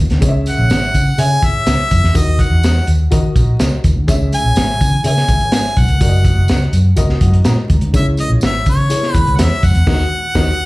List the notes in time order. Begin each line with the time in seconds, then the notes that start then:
0.10 D2, snare, closed hi-hat
0.21 C#2 C#3 G#4 C#5 D#5, kick, closed hi-hat, tambourine
0.28 E5
0.46 F#5, closed hi-hat, tambourine
0.58 A#1
0.70 G#1, snare, closed hi-hat, tambourine
0.94 C#3, kick, closed hi-hat, tambourine
1.18 C#3 G#4 C#5 E5 G#5, closed hi-hat, tambourine
1.43 G#1 E5, kick, closed hi-hat, tambourine
1.66 C#2, snare, closed hi-hat, tambourine
1.91 F2, kick, closed hi-hat, tambourine
2.03 E2, snare
2.14 D#2 D#3 F#4 A#4 D#5, kick, closed hi-hat, tambourine
2.39 F#5, kick, closed hi-hat, tambourine
2.51 E2
2.63 snare, closed hi-hat, tambourine
2.87 D#2, closed hi-hat, tambourine
3.11 D#3 F#4 A#4 D#5, kick, closed hi-hat, tambourine
3.36 A#1, kick, closed hi-hat, tambourine
3.59 C#2, snare, closed hi-hat, tambourine
3.84 D#2, kick, closed hi-hat, tambourine
3.96 D2
4.07 C#2 C#3 G#4 C#5 E5, kick, closed hi-hat, tambourine, muted conga
4.32 G#5, closed hi-hat, tambourine, muted conga
4.44 A#1
4.56 G#1, snare, closed hi-hat, tambourine, high conga
4.81 C#3, kick, closed hi-hat, tambourine, low conga
5.04 C#3 G#4 C#5 E5 G#5, closed hi-hat, tambourine
5.17 snare
5.28 G#1, kick, closed hi-hat, tambourine, muted conga
5.40 closed hi-hat
5.52 G#5, snare, closed hi-hat, tambourine, high conga
5.77 B1 F#5, kick, closed hi-hat, tambourine, high conga
5.88 C#2, closed hi-hat, high conga
6.00 F#1 F#4 A#4 D5, kick, closed hi-hat, tambourine, muted conga
6.08 D#5
6.25 kick, closed hi-hat, tambourine, muted conga
6.37 F#1
6.48 C#2, snare, closed hi-hat, tambourine, high conga
6.73 F#2, closed hi-hat, tambourine
6.96 C#2 F#4 A#4 D#5, kick, closed hi-hat, tambourine
7.09 snare
7.21 F#2 F#5, kick, closed hi-hat, tambourine, muted conga
7.34 closed hi-hat
7.45 A#2 A#5, snare, closed hi-hat, tambourine, high conga
7.70 D#2, kick, closed hi-hat, tambourine, high conga
7.81 D2, closed hi-hat, high conga
7.93 C#2 C#3 D#4 G#4 C#5 E5, kick, closed hi-hat, tambourine, muted conga
7.98 E4
8.17 D#5, closed hi-hat, tambourine, muted conga
8.30 A#1
8.41 G#1 E5, snare, closed hi-hat, tambourine, high conga
8.66 C#3 C#5, kick, closed hi-hat, tambourine, low conga
8.89 E4 G#4 C#5, closed hi-hat, tambourine, muted conga
9.03 snare
9.14 D#2 B4, kick, closed hi-hat, tambourine, muted conga
9.27 C#2, closed hi-hat
9.36 E2 F#5, snare, closed hi-hat, tambourine, high conga
9.42 E5
9.63 F2 F#5, kick, closed hi-hat, tambourine, high conga
9.75 E2, closed hi-hat, high conga
9.87 D#2 D#3 A#4 D#5, kick, snare, crash
9.92 F#4
10.35 D#2 D#3 A#4 D#5, kick, snare
10.40 F#4